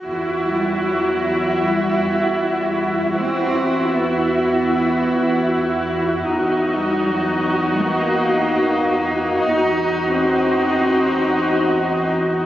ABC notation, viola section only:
X:1
M:4/4
L:1/8
Q:1/4=77
K:none
V:1 name="Viola section"
[E^F]8 | [E^F]8 | [^D^F]8 | [^D^F]8 |]